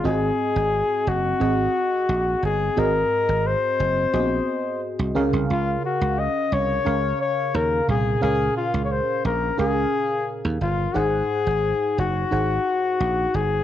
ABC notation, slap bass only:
X:1
M:4/4
L:1/16
Q:1/4=88
K:Abmix
V:1 name="Slap bass" clef=bass
A,,,2 z A,,,2 z G,,,2 A,,,2 z2 B,,,2 =G,,,2 | A,,,2 z A,,,2 z G,,,2 B,,,2 z3 C,, D,, C,, | D,,2 z D,,2 z C,,2 D,,2 z2 E,,2 C,,2 | D,,2 z D,,2 z B,,,2 D,,2 z3 E,, =G,,,2 |
A,,,2 z A,,,2 z G,,,2 A,,,2 z2 B,,,2 =G,,,2 |]